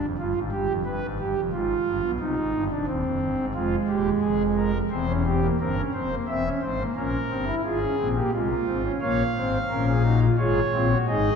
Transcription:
0.01 F1 F2
0.18 G1 G2 F4
0.35 G#1 G#2
0.52 G1 G2 G4
0.68 F1 F2
0.85 G1 G2 B4
1.03 G#1 G#2
1.19 G1 G2 G4
1.36 F1 F2
1.52 G#1 G#2 F4
1.86 G1 G2
2.03 B1 B2
2.20 C2 C3 D#4
2.36 G#1 G#2
2.53 G1 G2
2.70 F1 F2 D4
2.87 D#1 D#2 C4
3.04 F1 F2
3.20 G1 G2
3.37 G#1 G#2
3.54 F1 F2 G#3 F4
3.88 D#1 D#2 G4
4.21 F1 F2 G#4
4.56 A#4
4.90 E1 E2 C4 C5
5.08 C#4
5.26 C4 G4
5.42 A#3
5.60 G1 G2 C4 A#4
5.76 C#4
5.94 F1 F2 C4 C5
6.10 A#3
6.28 E1 E2 C4 E5
6.45 C#4
6.62 G#1 G#2 C4 C5
6.77 A#3
6.96 A#1 A#2 C#4 A#4
7.30 G1 G2 C4
7.47 E4
7.64 G#1 G#2 F4 G#4
7.81 C#4
7.98 A#1 A#2 C4
8.16 A#3 G4
8.32 C2 C3 G#3 F4
8.50 A#3
8.67 G#1 G#2 C4
8.85 C#4
9.01 A#1 A#2 A#3 C#5 F5
9.36 G#1 G#2 C4 C5
9.70 A#1 A#2 C#4 A#4
9.88 G#4
10.04 D#4 F#4
10.21 F4
10.38 G#1 G#2 F4 G#4 C#5
10.73 A#1 A#2 C4 F4
10.91 F#4
11.08 G#1 G#2 D#4 G#4 D#5

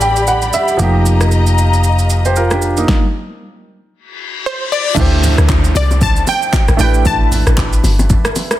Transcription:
Already playing: A1 G3 B3 D4 G4 A4 D5 A5 B5
0.01 G5, shaker
0.16 shaker
0.27 F#5, shaker
0.42 shaker
0.53 E5, shaker
0.68 shaker
0.77 F1 F3 A#3 D#4 D#5 A#5, shaker
0.83 G4
1.06 shaker
1.21 cross-stick, shaker
1.31 shaker
1.47 shaker
1.58 shaker
1.73 shaker
1.84 shaker
1.99 shaker
2.10 shaker
2.25 G4 C5, shaker
2.36 F4 A#4, shaker
2.51 D4 G4, cross-stick, shaker
2.62 shaker
2.77 A#3 D#4, shaker
2.88 kick, snare
3.93 reverse cymbal
4.46 C5
4.72 D5
4.95 D2 A3 D4 E4, kick, crash, downlifter, low conga, shaker
4.99 G4 C5
5.23 open hi-hat, low conga, shaker
5.38 D2, cross-stick, shaker
5.49 kick, clap, high bongo, shaker
5.64 shaker
5.75 C2 D5, open hi-hat, high bongo, low bongo, shaker
5.91 high bongo, low bongo, shaker
6.01 A5, kick, low conga, shaker
6.16 shaker
6.27 G5, open hi-hat, low bongo, shaker
6.42 shaker
6.53 kick, clap, high bongo, shaker
6.68 A1, cross-stick, shaker
6.77 A1 A3 D4 E4 G5, open hi-hat, shaker
6.81 G4 B4
6.94 shaker
7.05 A1 A5, kick, low conga, shaker
7.32 open hi-hat, low conga, shaker
7.47 A1, cross-stick, shaker
7.57 kick, clap, high bongo, shaker
7.73 shaker
7.84 G1, open hi-hat, high bongo, low bongo, shaker
7.99 high bongo, low bongo, shaker
8.10 kick, low conga, shaker
8.25 cross-stick, shaker
8.36 open hi-hat, low bongo, shaker
8.51 cross-stick, shaker

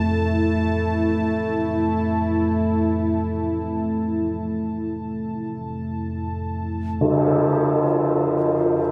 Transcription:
Already playing: F2 C3 A3 E4 A5
7.01 F2 C3 F4 A4, tam-tam
7.92 C5
8.37 C5
8.42 A#4
8.85 A4

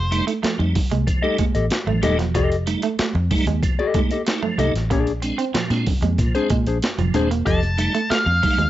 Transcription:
Already playing: F1 C5
0.11 G3 A3 D#4, muted clean electric guitar stroke, closed hi-hat
0.27 A3 D#4, closed hi-hat
0.43 F3 A3, muted fingered electric bass stroke, snare, closed hi-hat, muted conga
0.58 F2 G3 A3 D#4, muted clean electric guitar stroke, muted conga
0.75 A3 D#4, kick, open hi-hat, low conga
0.91 C2 G#3, closed hi-hat, high conga
1.07 F3, kick, closed hi-hat, muted conga
1.22 G3 A3 D#4 G4 A4 D#5, muted conga
1.38 G#3 A3 D#4, muted fingered electric bass stroke, kick, closed hi-hat, high conga
1.55 A1 G4 A4 D#5, closed hi-hat
1.70 A3 D#4, snare, closed hi-hat, muted conga
1.87 A1 F3 A3, muted conga, low conga
2.02 D#1 G3 A3 D#4 G4 A4 D#5, muted clean electric guitar stroke, closed hi-hat, high conga, low conga
2.19 E1 F3, snare, closed hi-hat
2.35 F1 F3 G4 A4 D#5, kick, closed hi-hat, muted conga
2.52 closed hi-hat
2.66 G3 A3 D#4, muted clean electric guitar stroke, closed hi-hat
2.82 A3 D#4, closed hi-hat
2.99 A3, muted fingered electric bass stroke, snare, closed hi-hat
3.15 F2, muted clean electric guitar stroke, muted conga
3.31 G3 A3 D#4, kick, open hi-hat, low conga
3.46 D#2 G#3, closed hi-hat, high conga
3.63 F3, kick, closed hi-hat, muted conga
3.79 G4 A4 D#5, muted conga
3.94 G3 G#3 A3 D#4, kick, closed hi-hat, high conga
4.11 A3 D#4 G4 A4 D#5, closed hi-hat
4.27 A3 D#4, muted clean electric guitar stroke, snare, closed hi-hat
4.43 F3 A3, muted conga, low conga
4.58 C2 A3 D#4 G4 A4 D#5, closed hi-hat, high conga, low conga
4.74 A1, snare, closed hi-hat
4.90 A#1 A#2 F3 A#3 D4 G#4 D5, kick, closed hi-hat
5.07 closed hi-hat, muted conga
5.22 G#3 C4 D4, muted clean electric guitar stroke, closed hi-hat
5.38 C4 D4, closed hi-hat
5.54 A#2 F3, muted fingered electric bass stroke, snare, closed hi-hat, muted conga
5.70 A#2 G#3 C4 D4, muted clean electric guitar stroke, snare, closed hi-hat, muted conga
5.86 C4 D4, kick, open hi-hat, low conga
6.02 F2 G#3, closed hi-hat, high conga
6.18 A#2 F3, kick, closed hi-hat, muted conga
6.35 G#3 C4 D4 G#4 C5, closed hi-hat, muted conga
6.50 A#2 G#3 C4 D4, kick, closed hi-hat, high conga
6.66 A#1 D4 G#4 C5, closed hi-hat
6.82 C4 D4, snare, closed hi-hat, high conga
6.98 F1 A#2 F3, closed hi-hat, low conga
7.14 D#1 G#3 C4 D4 G#4 C5, muted clean electric guitar stroke, closed hi-hat, high conga, low conga
7.30 E1 A#3, closed hi-hat
7.45 F1 F3 G4 A4 D#5 A5, kick, closed hi-hat
7.63 closed hi-hat, muted conga
7.78 G3 A3 D#4, muted clean electric guitar stroke, closed hi-hat
7.94 A3 D#4, closed hi-hat
8.10 A3 F5, muted fingered electric bass stroke, snare, closed hi-hat
8.26 F2, muted clean electric guitar stroke, muted conga
8.42 G3 A3 D#4, kick, open hi-hat, low conga
8.58 D#2 G#3, closed hi-hat, high conga

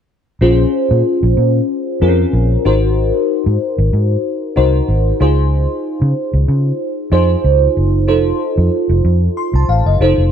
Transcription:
0.41 A#1 C#4 F4 G#4 C5
0.91 A#2
1.23 A#1
1.37 A#2
2.01 F2 C4 F4 G#4 A#4
2.08 C#4
2.33 A#1
2.65 G#1 D#4 F#4 A#4 C5
3.46 G#2
3.78 G#1
3.93 G#2
4.56 C2 D#4 F#4 A#4 C5
4.88 G#1
5.20 C#2 D#4 F4 G#4 C5
6.02 C#3
6.33 C#2
6.48 C#3
7.12 F2 D#4 F4 G#4 C5
7.44 C#2
7.77 F#1
8.08 F1 D#4 F4 A4 C5
8.58 F2
8.89 F1
9.05 F2
9.37 C6
9.53 C2 A5
9.69 A1 F5
9.86 F#1 D#5
10.00 F1 D#4 F4 A4 C5
10.18 F1

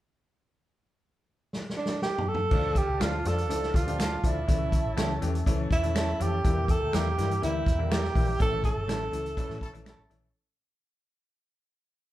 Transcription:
1.53 snare
1.70 snare
1.78 D4
1.86 snare
2.02 G4, snare
2.18 floor tom
2.28 A4
2.34 floor tom
2.51 D2 F3 A3 D4 F4 A4 D5 F5 A5, kick, crash
2.75 G4, kick, closed hi-hat
2.88 C#2
3.00 D2 F3 A3 D4 F4 A4, finger snap, snare, closed hi-hat
3.25 F2 F3 A3 D4 F4 A4, snare, closed hi-hat
3.38 closed hi-hat
3.49 C#2 F3 A3 D4 E4, closed hi-hat
3.62 snare
3.74 D2 F4, kick, closed hi-hat
3.87 F3 A3 D4 G4, closed hi-hat
3.99 A3 D4 F4 A4, finger snap, snare, closed hi-hat
4.23 D2 F3 A3 D4 E4 F4, kick, closed hi-hat
4.47 C#2 E3 A3 C#4 E4 A4 C#5 E5, kick, closed hi-hat
4.72 kick, closed hi-hat
4.86 A1
4.97 C#2 E3 A3 C#4 E4 G4 A4, finger snap, snare, closed hi-hat
5.22 E2 E3 A3 C#4 G4, closed hi-hat
5.35 closed hi-hat
5.46 C#2 E3 A3 C#4 E4, kick, closed hi-hat
5.71 E2 E4, kick, closed hi-hat
5.83 E3 A3 C#4 E4, closed hi-hat
5.95 A3 C#4 E4 A4, finger snap, snare, closed hi-hat
6.20 F2 E3 A3 C#4 E4 G4, closed hi-hat
6.44 E2 E3 G3 A#3 E4 G4 A#4 G5, kick, closed hi-hat
6.68 A4, kick, closed hi-hat
6.82 D2
6.93 E2 E3 G3 A#3 E4 G4 A#4, finger snap, snare, closed hi-hat
7.18 G2 E3 G3 A#3 E4, snare, closed hi-hat
7.31 closed hi-hat
7.42 D2 E3 G3 A#3 E4, closed hi-hat
7.66 E2, kick, closed hi-hat
7.79 E3 G3 A#3 E4
7.91 G3 A#3 E4 G4 A#4, finger snap, snare, closed hi-hat
8.04 snare
8.15 A#1 E3 G3 A#3 E4, kick, open hi-hat
8.39 A1 E3 A3 C#4 E4 A4 C#5 A5, kick, closed hi-hat
8.64 A4, kick, closed hi-hat
8.76 G1
8.88 A1 E3 A3 C#4 E4 A4, finger snap, snare, closed hi-hat
9.12 C#2 E3 A3 C#4 E4, closed hi-hat
9.26 closed hi-hat
9.37 E3 A3 C#4 E4 A4, kick, closed hi-hat
9.49 A2, snare
9.61 A1 C#4 E4 A4, kick, closed hi-hat
9.73 A#1 E3 A3 C#4 E4, closed hi-hat
9.85 A3 C#4 E4 A4, finger snap, snare, closed hi-hat
9.98 A1
10.10 A#1 E3 A3 C#4 E4, closed hi-hat

